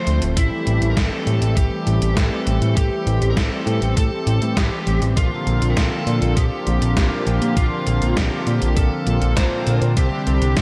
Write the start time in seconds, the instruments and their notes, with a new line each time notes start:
Already playing: analog synth pad D3 F3 A3 C4 F4, lead electric guitar C5
0.07 analog synth bass D2, closed hi-hat
0.22 analog synth bass D1, closed hi-hat
0.37 analog synth bass A1, analog synth pad E3 G3 G4, lead electric guitar E4, kick, closed hi-hat
0.67 analog synth bass A1, closed hi-hat
0.82 analog synth bass A1, closed hi-hat
0.90 lead electric guitar A#4
0.97 analog synth bass A1, lead electric guitar A4, kick, snare, closed hi-hat
1.27 analog synth bass A2, closed hi-hat
1.42 analog synth bass A1, closed hi-hat
1.56 analog synth bass A1, lead electric guitar G4, kick, closed hi-hat
1.87 analog synth bass A1, closed hi-hat
2.02 analog synth bass A1, closed hi-hat
2.17 analog synth bass A1, lead electric guitar A4, kick, snare, closed hi-hat
2.47 analog synth bass A1, closed hi-hat
2.62 analog synth bass A2, closed hi-hat
2.76 analog synth bass A1, lead electric guitar G4, kick, closed hi-hat
3.07 analog synth bass A1, closed hi-hat
3.22 analog synth bass A1, closed hi-hat
3.30 lead electric guitar A#4
3.37 analog synth bass A1, lead electric guitar A4, kick, snare, closed hi-hat
3.67 analog synth bass A2, closed hi-hat
3.82 analog synth bass A1, closed hi-hat
3.97 analog synth bass A2, lead electric guitar A4, kick, closed hi-hat
4.27 analog synth bass A1, closed hi-hat
4.42 analog synth bass A2, closed hi-hat
4.57 analog synth bass A1, lead electric guitar G4, kick, snare, closed hi-hat
4.87 analog synth bass A1, closed hi-hat
5.02 analog synth bass A1, closed hi-hat
5.17 analog synth bass A#1, analog polysynth A#2 A#3 C4 D4 F4, analog synth pad D3 F3 A#3 F4, lead electric guitar F4, kick, closed hi-hat
5.47 analog synth bass A#1, closed hi-hat
5.62 analog synth bass A#1, closed hi-hat
5.70 lead electric guitar A#4
5.77 analog synth bass A#1, lead electric guitar A4, kick, snare, closed hi-hat
6.07 analog synth bass A#2, closed hi-hat
6.22 analog synth bass A#1, closed hi-hat
6.36 analog synth bass A#1, lead electric guitar G4, kick, closed hi-hat
6.67 analog synth bass A#1, closed hi-hat
6.82 analog synth bass A#1, closed hi-hat
6.96 analog synth bass A#1, analog polysynth A#2 A#3 C4 D4 F4, lead electric guitar G4, kick, snare, closed hi-hat
7.27 analog synth bass A#1, analog polysynth A#2 A#3 C4 D4 F4, closed hi-hat
7.42 analog synth bass A#2, closed hi-hat
7.57 analog synth bass A#1, analog polysynth A#2 A#3 C4 D4 F4, lead electric guitar F4, kick, closed hi-hat
7.87 analog synth bass A#1, closed hi-hat
8.02 analog synth bass A#1, closed hi-hat
8.17 analog synth bass A#1, lead electric guitar G4, kick, snare, closed hi-hat
8.47 analog synth bass A#2, closed hi-hat
8.62 analog synth bass A#1, closed hi-hat
8.76 analog synth bass A#1, lead electric guitar A4, kick, closed hi-hat
9.07 analog synth bass A#1, closed hi-hat
9.22 analog synth bass A#1, closed hi-hat
9.37 analog synth bass A#1, analog polysynth A#2 A#3 C4 D4 F4, lead electric guitar C5, kick, snare, closed hi-hat
9.67 analog synth bass A#1, analog polysynth A#3 C4 D4 F4, closed hi-hat
9.82 analog synth bass A#2, closed hi-hat
9.97 analog synth bass C2, analog polysynth C3 G3 C4 D4 G4, analog synth pad G3 C4, lead electric guitar G4, kick, closed hi-hat
10.27 analog synth bass C2, closed hi-hat
10.42 analog synth bass C2, closed hi-hat
10.57 analog synth bass C2, lead electric guitar A#4, kick, snare, closed hi-hat